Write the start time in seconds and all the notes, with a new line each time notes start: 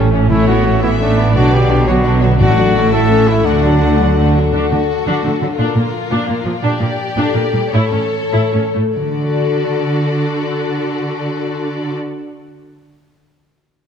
Already playing: A1 A2 G3 A3 A4 E5
0.11 E3 A3 C#4 E4
0.28 A2 A3 C#4 E4 C#5
0.47 E3 B3 E4 F#4
0.65 A3 C#4
0.82 E3 B3 E4 E5
1.00 A3 C#4 D4 B4
1.18 E3 B3 E4
1.34 B1 B2 D3 F#3 D4 F#4 D5
1.53 D3 F#3 B3 F#4 G4
1.71 D3 F#3 D4
1.87 D3 F#3 B3 F#4 C#5
2.04 D3 F#3 D4 B4 D5
2.21 D3 F#3 B3 D4 F#4 C#5
2.39 A1 A2 D3 A3 D4 F#4 D5
2.58 F#3 D4 F#4
2.75 D3 A3 D4 F#4
2.92 A3 E4 A4 E5
3.10 E3 C#4 A4
3.28 A3 E4
3.45 D2 D3 A3 D4 F#4 F#5
3.63 F#3 D4 F#4
3.82 A3 D4 F#4 A4
4.00 F#3 D4 F#4
4.18 A3 D4 F#4 D5
4.36 F#3 D4 F#4 A4
4.53 D3 D4 F#4 A4
4.70 D3 A3
4.89 F#4
5.07 D3 D4
5.24 D3 A3
5.41 D3 F#3
5.58 A#2 D4 F4 A#4
5.75 A#2 F3 A#3
5.93 F4
6.11 A#2 D4
6.27 A#2 A#3 F4
6.45 A#2 F3
6.62 A#2 D4 G4 D5
6.80 A#2 A#3
7.16 A#2 D4 A4
7.34 A#2 A#3 G4
7.53 A#2 G3
7.71 A2 E4 A4 C#5
7.91 A2 E3 C#4
8.32 A2 E4 B4
8.53 A2 C#4
8.74 A2 E3 A3
8.96 D3 F#4 A4 D5
9.04 D4
9.11 F#4
9.18 A4
9.25 D5
9.32 A5